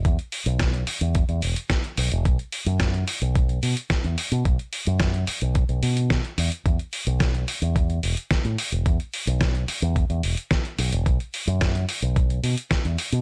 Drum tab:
HH |xxoxxxoxxxoxxxox|xxoxxxoxxxoxxxox|xxoxxxoxxxoxxxox|xxoxxxoxxxoxxxox|
SD |----o-------o---|----o-------o---|----o-------o---|----o-------o---|
BD |o---o---o---o---|o---o---o---o---|o---o---o---o---|o---o---o---o---|

HH |xxoxxxoxxxoxxxox|xxoxxxoxxxoxxxox|
SD |----o-------o---|----o-------o---|
BD |o---o---o---o---|o---o---o---o---|